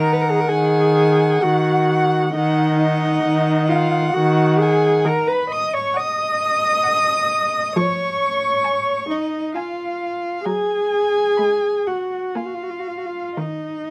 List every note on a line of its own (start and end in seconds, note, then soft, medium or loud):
0.00 0.37 D#3 medium
0.00 0.14 A#4 medium
0.00 0.94 F#5 medium
0.00 0.49 A#5 medium
0.13 0.23 B4 medium
0.21 0.32 A#4 medium
0.31 0.42 G#4 medium
0.40 0.50 A#4 medium
0.49 1.32 D#3 medium
0.49 1.44 G#4 medium
0.49 1.44 G#5 medium
0.95 1.87 F#5 medium
1.42 2.24 D#3 medium
1.42 2.34 F#4 medium
1.42 2.34 F#5 medium
1.91 2.35 F#5 medium
2.34 3.14 D#3 medium
2.34 3.70 D#4 medium
2.34 3.72 D#5 medium
2.34 2.80 F#5 medium
2.82 3.67 F#5 medium
3.24 4.03 D#3 medium
3.68 4.15 F4 medium
3.68 4.16 F5 medium
3.68 4.57 F#5 medium
4.13 4.95 D#3 medium
4.13 4.60 F#4 medium
4.13 4.63 F#5 medium
4.58 5.07 G#4 medium
4.58 5.04 F#5 soft
4.58 5.10 G#5 medium
5.06 5.78 D#3 medium
5.06 5.29 A#4 medium
5.06 5.34 A#5 medium
5.28 5.50 B4 medium
5.32 5.54 B5 medium
5.50 5.75 D#5 medium
5.50 5.74 D#6 medium
5.74 5.98 C#5 medium
5.74 6.01 C#6 medium
5.94 7.75 D#5 medium
5.94 6.63 F#5 medium
5.99 7.78 D#6 medium
6.83 7.53 F#5 medium
7.76 8.47 F3 medium
7.76 9.07 C#5 medium
7.76 9.12 C#6 medium
8.64 9.32 G#5 medium
9.09 9.56 D#4 medium
9.09 9.55 D#5 medium
9.55 10.45 F4 medium
9.55 10.47 F5 medium
9.55 10.24 G#5 medium
10.45 11.21 F#3 medium
10.45 11.89 G#4 medium
10.45 11.88 G#5 medium
10.45 11.16 A#5 soft
11.38 12.17 G#3 soft
11.38 12.11 B5 soft
11.87 12.37 F#4 medium
11.87 12.38 F#5 medium
12.36 13.18 A#3 medium
12.36 12.47 F4 soft
12.36 13.37 F5 soft
12.36 13.13 G#5 soft
12.46 12.55 F#4 soft
12.54 12.64 F4 soft
12.63 12.72 F#4 soft
12.70 12.81 F4 soft
12.79 12.89 F#4 soft
12.88 12.99 F4 soft
12.98 13.07 F#4 soft
13.06 13.41 F4 medium
13.38 13.90 D#3 soft
13.38 13.90 D#4 medium
13.38 13.90 D#5 medium